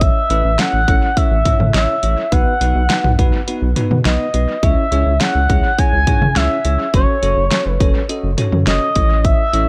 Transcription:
Already playing: analog synth bass A1, tine electric piano C#4 E4 A4 C#5
0.01 analog synth lead E5, kick, closed hi-hat
0.30 analog synth bass A1, tine electric piano C#4 E4 A4 B4, closed hi-hat
0.44 analog synth bass A1
0.59 tine electric piano C#4 E4 A4 C#5, analog synth lead F#5, snare, closed hi-hat
0.73 analog synth bass A1
0.88 analog synth bass A1, tine electric piano C#4 E4 A4 C#5, kick, closed hi-hat
1.17 tine electric piano C#4 E4 A4 C#5, analog synth lead E5, kick, closed hi-hat
1.31 analog synth bass A1
1.45 tine electric piano C#4 E4 A4 C#5, kick, closed hi-hat, mid tom
1.60 analog synth bass A2, mid tom
1.74 analog synth bass A1, tine electric piano C#4 E4 A4 C#5, analog synth lead E5, snare, closed hi-hat
2.03 analog synth bass A1, tine electric piano C#4 E4 A4 C#5, closed hi-hat
2.32 analog synth bass B1, tine electric piano B3 D#4 F#4 B4, analog synth lead F#5, kick, closed hi-hat
2.61 analog synth bass B1, tine electric piano B3 D#4 F#4 B4, closed hi-hat
2.75 analog synth bass B1
2.90 tine electric piano B3 D#4 F#4 B4, snare, closed hi-hat
3.04 analog synth bass B1, mid tom
3.19 analog synth bass B1, tine electric piano B3 D#4 F#4 B4, kick, closed hi-hat
3.48 tine electric piano B3 D#4 F#4 B4, closed hi-hat
3.62 analog synth bass B1
3.76 tine electric piano B3 D#4 F#4 B4, closed hi-hat, mid tom
3.91 analog synth bass B2, mid tom
4.05 analog synth bass B1, tine electric piano B3 D#4 F#4 B4, analog synth lead D#5, snare, closed hi-hat
4.34 analog synth bass B1, tine electric piano B3 D#4 F#4 B4, closed hi-hat
4.63 analog synth bass C#2, tine electric piano C#4 E4 G#4 C#5, analog synth lead E5, kick, closed hi-hat
4.92 analog synth bass C#2, tine electric piano C#4 E4 G#4 C#5, closed hi-hat
5.06 analog synth bass C#2
5.20 tine electric piano C#4 E4 G#4 C#5, analog synth lead F#5, snare, closed hi-hat
5.35 analog synth bass C#2
5.49 analog synth bass C#2, tine electric piano C#4 E4 G#4 C#5, kick, closed hi-hat
5.78 tine electric piano C#4 E4 G#4 C#5, analog synth lead G#5, kick, closed hi-hat
5.93 analog synth bass C#2
6.07 tine electric piano C#4 E4 G#4 C#5, kick, closed hi-hat, mid tom
6.22 analog synth bass C#3, mid tom
6.36 analog synth bass C#2, tine electric piano C#4 E4 G#4 C#5, analog synth lead E5, snare, closed hi-hat
6.65 analog synth bass C#2, tine electric piano C#4 E4 G#4 C#5, closed hi-hat
6.94 analog synth bass F#1, tine electric piano C#4 F#4 A4 C#5, analog synth lead C#5, kick, closed hi-hat
7.23 analog synth bass F#1, tine electric piano C#4 F#4 A4 C#5, closed hi-hat
7.37 analog synth bass F#1
7.51 tine electric piano C#4 F#4 A4 C#5, snare, closed hi-hat
7.66 analog synth bass F#1
7.71 analog synth lead B4
7.80 analog synth bass F#1, tine electric piano C#4 F#4 A4 C#5, kick, closed hi-hat
8.09 tine electric piano C#4 F#4 A4 D#5, closed hi-hat
8.24 analog synth bass F#1
8.38 tine electric piano C#4 F#4 A4 C#5, closed hi-hat, mid tom
8.52 analog synth bass F#2, mid tom
8.67 analog synth bass F#1, tine electric piano C#4 F#4 A4 C#5, analog synth lead D#5, snare, closed hi-hat
8.95 analog synth bass A1, tine electric piano C#4 E4 A4 C#5, kick, closed hi-hat
9.24 analog synth lead E5, kick, closed hi-hat
9.53 analog synth bass A1, tine electric piano C#4 E4 A4 C#5, closed hi-hat

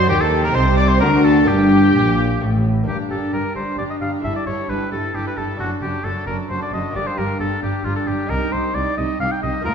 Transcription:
0.07 double bass section D#2, cello section D#3, lute D#3 A#3 G4, oboe G4, viola section G4, violin section G4 G5
0.21 oboe A4, violin section A4 A5
0.44 oboe A#4, violin section A#4 A#5
0.52 double bass section C2, cello section C3, lute C3 C4 D#4, oboe C5, violin section C5 C6
0.77 oboe D5, violin section D5 D6
0.89 oboe C5, violin section C5 C6
0.98 double bass section D2, cello section D3, lute D3 C4 D4, viola section F#4, oboe A#4, violin section A#4 A#5
1.23 oboe A4, violin section A4 A5
1.45 double bass section G1, cello section G2, lute G2 A#3 D4, violin section G4 G5, viola section G4, oboe G4
1.94 double bass section A#1, cello section A#2, lute A#2
2.41 double bass section A1, cello section A2, lute A2
2.83 lute A#3 D4 G4, viola section D4, oboe G4
2.87 double bass section G1, cello section G2, lute G2, violin section G4 A#5
3.10 double bass section G1, lute G2, cello section G2, viola section D4, violin section G4 A#5, oboe A4
3.33 double bass section G1, lute G2, cello section G2, viola section D4, violin section G4 A#5, oboe A#4
3.55 double bass section G1, lute G2, cello section G2, viola section D4, violin section G4 A#5, oboe C5
3.78 double bass section G1, cello section G2, lute G2, viola section D4, violin section G4 A#5, oboe D5
3.90 oboe D#5
4.01 double bass section G1, cello section G2, lute G2, viola section D4, violin section G4 A#5, oboe F5
4.20 lute A3 E4 A4
4.24 double bass section G1, cello section G2, lute G2, viola section E4, violin section A4 A5, oboe E5
4.36 oboe D5
4.46 double bass section G1, lute G2, cello section G2, viola section E4, violin section A4 A5, oboe C#5
4.69 double bass section G1, cello section G2, lute G2, viola section E4, violin section A4 A5, oboe B4
4.92 double bass section G1, cello section G2, lute G2, viola section E4, oboe A4, violin section A4 A5
5.14 double bass section G1, lute G2, cello section G2, viola section E4, oboe G4, violin section A4 A5
5.27 oboe B4
5.37 double bass section G1, lute G2, cello section G2, viola section E4, oboe A4, violin section A4 A5
5.55 lute A3 D4 A4
5.60 double bass section F#1, lute F#2, cello section F#2, viola section D4, oboe F#4, violin section A4 A5
5.82 double bass section F#1, lute F#2, cello section F#2, viola section D4, oboe G4, violin section A4 A5
6.04 double bass section F#1, lute F#2, cello section F#2, viola section D4, oboe A4, violin section A4 A5
6.27 double bass section F#1, cello section F#2, lute F#2, viola section D4, violin section A4 A5, oboe A#4
6.50 double bass section F#1, lute F#2, cello section F#2, viola section D4, violin section A4 A5, oboe C5
6.62 oboe D5
6.72 double bass section F#1, cello section F#2, lute F#2, viola section D4, violin section A4 A5, oboe D#5
6.91 lute A#3 D4 G4, violin section A#5
6.95 double bass section G1, cello section G2, lute G2, viola section D4, violin section G4, oboe D5
7.07 oboe C5
7.17 double bass section G1, cello section G2, lute G2, viola section D4, violin section G4 A#5, oboe A#4
7.40 double bass section G1, cello section G2, lute G2, viola section D4, violin section G4 A#5, oboe A4
7.62 double bass section G1, cello section G2, lute G2, viola section D4, violin section G4 A#5, oboe G4
7.84 double bass section G1, cello section G2, lute G2, viola section D4, oboe F4, violin section G4 A#5
7.96 oboe A4
8.07 double bass section G1, lute G2, cello section G2, viola section D4, violin section G4 A#5, oboe G4
8.27 cello section C2, double bass section C2, lute D#4 G4, viola section D#4, violin section G4 G5, oboe A#4
8.52 double bass section C2, cello section C2, viola section D#4, violin section G4 G5, oboe C5
8.75 cello section C2, double bass section C2, viola section D#4, violin section G4 G5, oboe D5
8.97 cello section C2, double bass section C2, viola section D#4, violin section G4 G5, oboe D#5
9.20 cello section C2, double bass section C2, viola section D#4, violin section G4 G5, oboe F5
9.31 oboe G5
9.42 double bass section C2, cello section C2, viola section D#4, violin section G4 G5, oboe D#5
9.61 cello section D2, double bass section D2, lute A#3 D4 F4, viola section A#3, violin section F4, oboe A#4
9.65 lute D2, violin section A#5

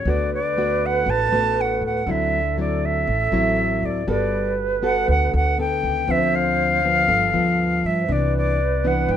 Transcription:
Already playing: flute C#5
0.05 upright bass D2, nylon-string guitar D3 A3 B3 F#4, alto flute B4
0.10 flute D5
0.34 flute D5
0.57 nylon-string guitar A3 B3 F#4
0.86 flute F#5
1.06 upright bass A1, nylon-string guitar A2, flute A5
1.32 upright bass A1, nylon-string guitar A3 B3 F#4
1.61 flute F#5
1.82 upright bass D2
1.86 flute F#5
2.06 upright bass D2, nylon-string guitar D3 F#3 C4 E4, alto flute A4
2.11 flute E5
2.58 nylon-string guitar F#3 C4 E4, flute D5
2.85 flute E5
3.07 upright bass A1, nylon-string guitar A2
3.32 upright bass A1, nylon-string guitar F#3 C4 E4
3.83 upright bass D2, flute D5
4.07 upright bass G1, nylon-string guitar G3 B3 F#4 A4, alto flute B4, flute D5
4.82 nylon-string guitar B3 F#4 A4, flute F#5
5.08 upright bass D2, nylon-string guitar D3, flute F#5
5.34 upright bass D2, flute F#5
5.58 nylon-string guitar B3 A4, flute G5
5.83 upright bass C#2
6.08 upright bass D2, nylon-string guitar D3 F3 C4, alto flute C5, flute E5
6.35 flute F5
6.84 nylon-string guitar F3 B3
7.08 upright bass G1, nylon-string guitar G2, alto flute A4
7.33 upright bass D2, nylon-string guitar F3 B3
7.84 upright bass G2, flute E5
8.01 alto flute C5
8.08 upright bass C2, nylon-string guitar C3 E3 B3 D4, alto flute B4
8.12 flute D5
8.38 flute D5
8.84 nylon-string guitar E3 B3 D4, flute F#5
9.08 upright bass G2, nylon-string guitar G2, flute G5

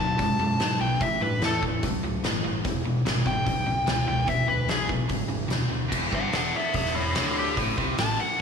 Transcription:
Already playing: overdriven electric guitar B2
0.00 fingered electric bass D#2, overdriven electric guitar F#3, lead electric guitar A5
0.18 fingered electric bass F#2, overdriven electric guitar B2 G#3, kick, open hi-hat
0.39 fingered electric bass F#2, overdriven electric guitar B2 G#3
0.60 fingered electric bass G#2, overdriven electric guitar B2 F#3, snare, open hi-hat
0.80 fingered electric bass B1, overdriven electric guitar B2 F#3, lead electric guitar G5
1.01 fingered electric bass A1, overdriven electric guitar A2 E3, lead electric guitar E5, kick, open hi-hat
1.20 fingered electric bass G2, overdriven electric guitar A2 E3, lead electric guitar B4
1.41 fingered electric bass E2, overdriven electric guitar A2 E3, snare, open hi-hat
1.45 lead electric guitar A4
1.62 overdriven electric guitar A2 E3, kick
1.83 fingered electric bass C#2, overdriven electric guitar A2 F#3, kick, open hi-hat
2.03 fingered electric bass C#2, overdriven electric guitar A2 F#3
2.23 fingered electric bass G1, overdriven electric guitar A2 E3, snare, open hi-hat
2.43 fingered electric bass G1, overdriven electric guitar A2 E3
2.65 fingered electric bass E1, overdriven electric guitar E2 B2, kick, open hi-hat
2.85 fingered electric bass E1, overdriven electric guitar E2 B2
3.05 fingered electric bass G#1, overdriven electric guitar E2 B2, snare, open hi-hat
3.26 fingered electric bass G#1, overdriven electric guitar E2 B2, lead electric guitar G5, kick
3.46 fingered electric bass B1, overdriven electric guitar E2 C#3, kick, open hi-hat
3.66 fingered electric bass B1, overdriven electric guitar E2 C#3
3.86 fingered electric bass C#2, overdriven electric guitar E2 B2, snare, open hi-hat
4.07 fingered electric bass C#2, overdriven electric guitar E2 B2, lead electric guitar G5
4.27 fingered electric bass D2, overdriven electric guitar E2 B2, lead electric guitar E5, kick, open hi-hat
4.47 fingered electric bass D2, overdriven electric guitar E2 B2, lead electric guitar B4
4.68 fingered electric bass B1, overdriven electric guitar E2 B2, lead electric guitar G#4, snare, open hi-hat
4.89 overdriven electric guitar E2 B2, kick
5.08 fingered electric bass G#1, overdriven electric guitar E2 C#3, kick, open hi-hat
5.28 fingered electric bass G#1, overdriven electric guitar E2 C#3
5.48 fingered electric bass D2, overdriven electric guitar E2 B2, snare, open hi-hat
5.69 fingered electric bass D2, overdriven electric guitar E2 B2
5.89 fingered electric bass E1, overdriven electric guitar E2, kick, crash
6.11 fingered electric bass G1, overdriven electric guitar G2, lead electric guitar D5, kick
6.15 lead electric guitar F#5
6.33 fingered electric bass E1, overdriven electric guitar E2, lead electric guitar D5, snare, open hi-hat
6.37 lead electric guitar F#5
6.56 lead electric guitar G#4 E5
6.74 fingered electric bass E1, overdriven electric guitar E2, lead electric guitar G#4 E5, kick, open hi-hat
6.85 snare
6.94 fingered electric bass E1, overdriven electric guitar E2, lead electric guitar E4 C#5
7.14 fingered electric bass D2, overdriven electric guitar D3, lead electric guitar E4 C#5, snare, open hi-hat
7.39 lead electric guitar G4
7.57 fingered electric bass A1, overdriven electric guitar A2, kick, open hi-hat
7.77 fingered electric bass C2, overdriven electric guitar C3, kick
7.98 fingered electric bass A1, overdriven electric guitar A2, lead electric guitar A5, snare, open hi-hat
8.20 lead electric guitar F#5

